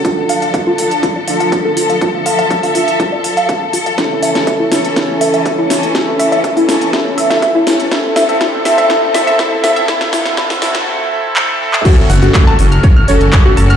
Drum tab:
CC |----------------|----------------|----------------|----------------|
HH |x-oxx-oxx-oxx-ox|x-oxxooxx-oxx-ox|x-oxx-oxx-oxx-ox|x-oxxooxx-oxx-ox|
CP |----------------|----------------|----------------|----------------|
SD |----------------|----------------|o--o--o-o-----o-|o-----o-o--o--o-|
BD |o---o---o---o---|o---o---o---o---|o---o---o---o---|o---o---o---o---|

CC |----------------|----------------|x---------------|
HH |x-oxx-oxx-oxx-ox|xxoxxoox--------|x-oxx-oxx-oxx-ox|
CP |----------------|------------x--x|----x-------x---|
SD |o-o-o-o-o-o-o-o-|oooooooo--------|----------------|
BD |o---o---o---o---|o---o-----------|o---o---o---o---|